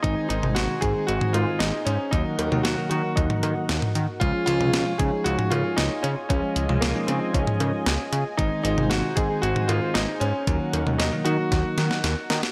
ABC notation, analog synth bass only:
X:1
M:4/4
L:1/16
Q:1/4=115
K:Abmix
V:1 name="Analog synth bass" clef=bass
A,,, z A,,, A,,, A,,, z A,, z A,,, z A,, z A,,, z A,, z | E,, z E,, E,, E,, z E, z E,, z E, z E,, z E, z | D,, z D,, D,, D,, z D, z D,, z D, z D,, z D, z | D,, z D,, D,, D,, z D, z D,, z D, z D,, z D, z |
A,,, z A,,, A,,, A,,, z A,, z A,,, z A,, z A,,, z A,, z | E,, z E,, E,, E,, z E, z E,, z E, z E,, z E, z |]